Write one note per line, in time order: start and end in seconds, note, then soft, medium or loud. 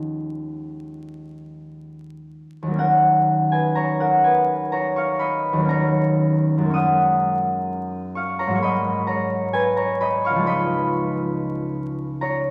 0.00 2.17 D#2 soft
0.00 2.22 F3 soft
0.00 2.26 G#3 soft
0.00 2.31 C#4 soft
0.00 2.35 D#4 soft
0.00 1.31 F4 medium
0.00 0.82 F#4 medium
0.00 0.35 G#4 medium
0.00 2.34 D#5 medium
0.00 1.30 F5 medium
0.00 0.33 G#5 medium
2.62 5.52 D#2 soft
2.67 5.55 F#3 soft
2.67 5.60 A#3 soft
2.75 5.64 C#4 soft
2.75 3.99 F#5 medium
2.80 4.00 A#4 medium
3.52 4.24 B4 medium
3.52 3.93 G#5 medium
3.75 4.72 C#5 medium
3.75 4.17 A#5 loud
4.00 7.91 A#4 medium
4.00 4.41 F#5 medium
4.24 6.77 B4 medium
4.24 5.05 G#5 medium
4.72 5.69 C#5 medium
4.72 5.68 A#5 medium
4.96 6.78 F5 medium
4.96 5.37 C#6 medium
5.19 6.77 D#5 medium
5.19 6.04 B5 medium
5.53 6.69 D#2 medium
5.53 8.49 F#3 soft
5.61 6.64 A#3 soft
5.61 6.69 C#4 medium
5.69 8.39 C#5 medium
5.69 8.38 A#5 medium
6.58 8.57 F#2 medium
6.58 8.53 G#3 soft
6.65 8.58 A#3 soft
6.70 8.64 C#4 soft
6.70 9.12 D#6 medium
6.75 10.52 F#5 medium
8.15 8.66 F5 medium
8.15 8.54 C#6 medium
8.39 8.66 C#5 medium
8.39 8.66 A#5 medium
8.47 10.44 G#2 medium
8.47 10.45 F#3 medium
8.55 10.37 G#3 medium
8.55 8.66 C#6 medium
8.59 10.50 A#3 medium
8.59 9.99 B5 loud
8.64 10.00 D#5 medium
9.07 9.77 C#5 medium
9.07 9.75 A#5 medium
9.53 12.51 B4 medium
9.53 12.51 G#5 loud
9.76 12.21 C#5 medium
9.76 10.17 A#5 medium
10.01 10.47 D#5 medium
10.01 10.40 B5 loud
10.25 12.51 F5 medium
10.25 10.63 C#6 medium
10.30 12.51 C#2 medium
10.35 12.51 F3 soft
10.35 12.51 G#3 soft
10.43 12.51 D#4 soft
10.47 12.51 D#5 medium
10.47 12.51 B5 loud
12.21 12.51 C#5 medium
12.21 12.51 A#5 medium